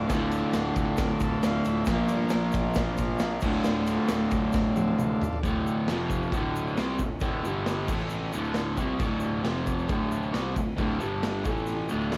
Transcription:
Already playing: overdriven electric guitar D3, transistor combo organ F4 A4 D5
0.08 picked electric bass D1, overdriven electric guitar D2 A2, kick, snare, ride, shaker
0.13 overdriven electric guitar D3
0.31 ride, shaker
0.53 picked electric bass D1, snare, ride, shaker
0.76 picked electric bass D1, kick, ride, shaker
0.97 picked electric bass D1, kick, snare, ride, shaker
1.20 picked electric bass D1, kick, ride, shaker
1.24 transistor combo organ A5
1.43 picked electric bass D1, transistor combo organ F5, snare, ride, shaker
1.65 picked electric bass D1, transistor combo organ E5, ride, shaker
1.85 picked electric bass A#1, overdriven electric guitar A#2, transistor combo organ F4, kick, snare, ride, shaker
1.90 overdriven electric guitar F3 A#3, transistor combo organ A#4 D5
2.08 picked electric bass G2, ride, shaker
2.29 snare, ride, shaker
2.33 picked electric bass A#1
2.52 picked electric bass A#1, kick, ride, shaker
2.74 picked electric bass A#1, kick, snare, ride, shaker
2.97 picked electric bass A#1, kick, ride, shaker
3.18 picked electric bass A#1, snare, ride, shaker
3.40 picked electric bass D1, overdriven electric guitar D2, transistor combo organ F4 A4, kick, crash, shaker
3.45 overdriven electric guitar A2 D3, transistor combo organ D5
3.64 picked electric bass D1, snare, shaker
3.87 ride, shaker
4.08 picked electric bass D1, snare, ride, shaker
4.31 picked electric bass D1, kick, ride, shaker
4.52 picked electric bass D1, kick, snare, shaker
4.76 picked electric bass D1, high tom, shaker
4.88 high tom
4.99 picked electric bass D1, mid tom, shaker
5.20 picked electric bass D1, floor tom, shaker
5.33 floor tom
5.43 picked electric bass D1, overdriven electric guitar D2 A2 D3, kick, crash, shaker
5.67 shaker
5.88 picked electric bass F1, overdriven electric guitar F2 C3 F3, snare, crash, shaker
6.10 kick, shaker
6.23 shaker
6.31 picked electric bass D1, overdriven electric guitar D2 A2 D3, kick, crash, shaker
6.56 shaker
6.67 shaker
6.76 picked electric bass C2, overdriven electric guitar C3 G3 C4, snare, crash, shaker
6.99 picked electric bass D1, overdriven electric guitar D2 A2, kick, shaker
7.20 picked electric bass D1, overdriven electric guitar D2 A2 D3, kick, crash, shaker
7.44 picked electric bass G1, overdriven electric guitar G2 D3 G3, shaker
7.66 snare, crash, shaker
7.88 picked electric bass A1, overdriven electric guitar A2 E3 A3, kick, crash, shaker
7.99 shaker
8.10 crash, shaker
8.33 picked electric bass D1, overdriven electric guitar D2 A2 D3, shaker
8.44 shaker
8.54 snare, crash, shaker
8.77 picked electric bass C2, overdriven electric guitar C3 G3 C4, kick, shaker
8.99 picked electric bass D1, overdriven electric guitar D2 A2 D3, kick, crash, shaker
9.20 shaker
9.43 picked electric bass F1, overdriven electric guitar F2 C3 F3, snare, crash, shaker
9.67 kick, shaker
9.78 shaker
9.87 picked electric bass D1, overdriven electric guitar D2 A2 D3, kick, crash, shaker
10.12 shaker
10.22 shaker
10.33 picked electric bass C2, overdriven electric guitar C3 G3 C4, snare, crash, shaker
10.55 picked electric bass D1, overdriven electric guitar D2 A2, kick, shaker
10.77 picked electric bass D1, overdriven electric guitar D2 A2 D3, kick, crash, shaker
10.99 overdriven electric guitar G2 D3 G3, shaker
11.04 picked electric bass G1
11.23 snare, crash, shaker
11.45 picked electric bass A1, overdriven electric guitar A2 E3 A3, kick, shaker
11.57 shaker
11.66 crash, shaker
11.89 overdriven electric guitar D2 A2 D3, shaker
11.93 picked electric bass D1
12.00 shaker
12.12 snare, crash, shaker

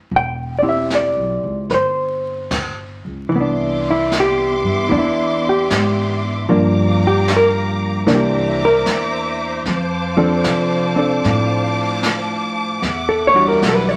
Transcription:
Already playing: hollow-body jazz guitar C4 E4 G4 B4
0.10 upright bass E1, brush sweep
0.16 hollow-body jazz guitar G5
0.59 hollow-body jazz guitar C4 D5
0.63 hollow-body jazz guitar E4 G4
0.69 hollow-body jazz guitar E5
0.90 snare, hi-hat pedal
0.95 hollow-body jazz guitar D5
1.16 upright bass B1
1.43 upright bass C#2
1.70 upright bass G1, hollow-body jazz guitar B4, brush sweep, snare
1.74 hollow-body jazz guitar C5
2.51 kick, snare, hi-hat pedal, crash
3.05 upright bass C#2
3.29 upright bass C2, hollow-body jazz guitar E3, string section B3 E5 C6 D6, brush sweep
3.36 hollow-body jazz guitar B3
3.41 hollow-body jazz guitar D4
3.90 hollow-body jazz guitar E4
4.11 snare, hi-hat pedal
4.20 hollow-body jazz guitar G4
4.63 upright bass G2
4.89 upright bass E2, hollow-body jazz guitar E3 B3 D4, brush sweep
4.98 hollow-body jazz guitar E4
5.49 hollow-body jazz guitar G4
5.70 upright bass G#2, snare, hi-hat pedal
6.46 upright bass G2, hollow-body jazz guitar F3 A#3, string section G4 F5 A#5 D6, brush sweep
6.50 hollow-body jazz guitar D4
7.07 hollow-body jazz guitar G4
7.28 snare, hi-hat pedal
7.36 hollow-body jazz guitar A#4
8.07 upright bass C2, hollow-body jazz guitar E3 A#3 D4, string section C5 E5 A#5 D6, brush sweep, snare
8.15 hollow-body jazz guitar G4
8.65 hollow-body jazz guitar A#4
8.86 upright bass E2, snare, hi-hat pedal
9.65 upright bass F2, string section F5 A5 D6, brush sweep, snare
10.17 hollow-body jazz guitar F3 C4 D4 A4
10.44 upright bass C3, snare, hi-hat pedal
10.96 hollow-body jazz guitar C4 D4 A4
11.24 upright bass A2, brush sweep, snare
12.03 snare, hi-hat pedal
12.82 upright bass E2, string section E5 F#5, brush sweep, snare
13.09 hollow-body jazz guitar A4
13.27 hollow-body jazz guitar C#5
13.34 hollow-body jazz guitar E3 G3 D4 F#4
13.48 hollow-body jazz guitar A#4
13.61 upright bass B1, snare, hi-hat pedal
13.69 hollow-body jazz guitar B4
13.89 hollow-body jazz guitar C#5

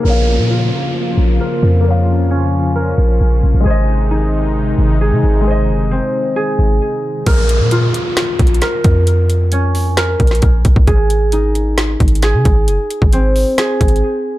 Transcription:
Already playing: harp C4 G#4
0.00 grand piano A#3 A#4
0.05 808-style bass A#1, analog synth pad C#3 F3 A#3 F4, harp A#4, grand piano C#5, downlifter
0.10 grand piano F5
0.39 808-style bass A#2
0.50 harp F4
1.18 808-style bass A#1
1.40 harp A#4
1.63 808-style bass F2
1.81 grand piano A#3 A#4
1.85 analog synth pad C#4, grand piano C#5
1.90 grand piano F5
2.31 harp C#4
2.76 harp A#4
2.98 808-style bass A#1
3.21 808-style bass A#1
3.43 808-style bass A#1
3.54 808-style bass A#1
3.61 grand piano G#3 G#4
3.66 808-style bass G#1, analog synth pad C3 D#3 G#3 D#4, harp G#4, grand piano C5
3.70 grand piano D#5
4.11 harp D#4
4.78 808-style bass G#1
5.01 harp G#4
5.12 808-style bass C3
5.24 808-style bass G#1
5.41 grand piano G#3 G#4
5.47 grand piano C5 D#5
5.69 808-style bass F#1
5.91 harp C4
6.36 harp G#4
6.59 808-style bass G#1
7.26 808-style bass A#1, harp A#4, kick, closed hi-hat, crash, downlifter
7.49 closed hi-hat
7.60 808-style bass A#2
7.71 harp F4, closed hi-hat
7.94 closed hi-hat
8.17 snare, closed hi-hat
8.39 808-style bass A#1, kick, closed hi-hat
8.47 closed hi-hat
8.54 closed hi-hat
8.62 harp A#4, snare, closed hi-hat
8.84 808-style bass F2, kick, closed hi-hat
9.07 closed hi-hat
9.30 closed hi-hat
9.52 harp C#4, closed hi-hat
9.75 open hi-hat
9.97 harp A#4, snare, closed hi-hat
10.20 808-style bass A#1, kick, closed hi-hat
10.27 snare, closed hi-hat
10.35 closed hi-hat
10.42 808-style bass A#1, kick, closed hi-hat
10.65 808-style bass A#1, kick, closed hi-hat
10.76 808-style bass A#1, kick
10.87 808-style bass G#1, harp G#4, kick, closed hi-hat
11.10 closed hi-hat
11.32 harp D#4, closed hi-hat
11.55 closed hi-hat
11.78 snare, closed hi-hat
12.00 808-style bass G#1, kick, closed hi-hat
12.08 closed hi-hat
12.15 closed hi-hat
12.22 harp G#4, snare, closed hi-hat
12.34 808-style bass C3
12.45 808-style bass G#1, kick, closed hi-hat
12.68 808-style bass F#1, closed hi-hat
12.91 closed hi-hat
13.02 808-style bass G#1, kick
13.13 harp C4, closed hi-hat
13.36 open hi-hat
13.58 harp G#4, snare, closed hi-hat
13.81 808-style bass G#1, kick, closed hi-hat
13.88 closed hi-hat
13.96 closed hi-hat

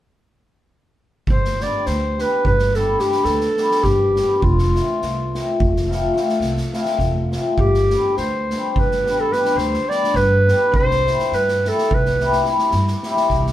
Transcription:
1.27 upright bass G1, clarinet C5, kick
1.45 snare
1.60 hammered dulcimer G3 B3 D4 G4, clarinet D5, snare
1.86 upright bass D2, clarinet C5, snare
2.18 hammered dulcimer G3 B3 D4 G4, clarinet B4, snare
2.45 upright bass G1, clarinet B4, kick
2.59 snare
2.74 hammered dulcimer G3 B3 D4 G4, clarinet A4, snare
2.99 hammered dulcimer G3 B3 D4 G4, clarinet G4, snare
3.12 snare
3.25 upright bass D2, clarinet A4, snare
3.41 snare
3.57 hammered dulcimer G3 B3 D4 G4, snare
3.71 snare
3.84 upright bass G1, clarinet G4, kick, snare
4.15 hammered dulcimer G3 B3 D4 G4, snare
4.37 clarinet G4
4.42 upright bass F1, clarinet F4, kick
4.58 snare
4.75 hammered dulcimer F3 A3 C4 F4, snare
5.02 upright bass C2, snare
5.34 hammered dulcimer F3 A3 C4 F4, snare
5.60 upright bass F1, kick
5.76 snare
5.88 hammered dulcimer F3 A3 C4 F4, snare
6.14 hammered dulcimer F3 A3 C4 F4, snare
6.29 snare
6.40 upright bass C2, snare
6.57 snare
6.73 hammered dulcimer F3 A3 C4 F4, snare
6.85 snare
6.99 upright bass F1, kick, snare
7.32 hammered dulcimer F3 A3 C4 F4, snare
7.58 upright bass G1, clarinet G4, kick
7.74 snare
7.90 hammered dulcimer G3 B3 D4 G4, snare
8.17 upright bass D2, clarinet C5, snare
8.50 hammered dulcimer G3 B3 D4 G4, snare
8.70 clarinet C5
8.76 upright bass G1, clarinet B4, kick
8.91 snare
9.05 hammered dulcimer G3 B3 D4 G4, snare
9.20 clarinet A4
9.30 hammered dulcimer G3 B3 D4 G4, clarinet B4, snare
9.45 snare
9.55 upright bass D2, clarinet C5, snare
9.74 snare
9.87 hammered dulcimer G3 B3 D4 G4, clarinet D5, snare
10.04 snare
10.14 upright bass G2, clarinet B4, kick, snare
10.46 hammered dulcimer G3 B3 D4 G4, snare
10.72 upright bass C2, clarinet C5, kick
10.91 snare
11.05 hammered dulcimer G3 C4 E4 G4, snare
11.19 snare
11.32 upright bass G2, clarinet B4, snare
11.48 snare
11.63 hammered dulcimer G3 C4 E4 G4, snare
11.68 clarinet A4
11.78 snare
11.91 upright bass C2, clarinet B4, kick
12.05 snare
12.20 hammered dulcimer G3 C4 E4 G4, snare
12.32 snare
12.45 hammered dulcimer G3 C4 E4 G4, snare
12.59 snare
12.71 upright bass G2, snare
12.88 snare
13.03 hammered dulcimer G3 C4 E4 G4, snare
13.17 snare
13.29 upright bass C2, kick, snare
13.47 snare

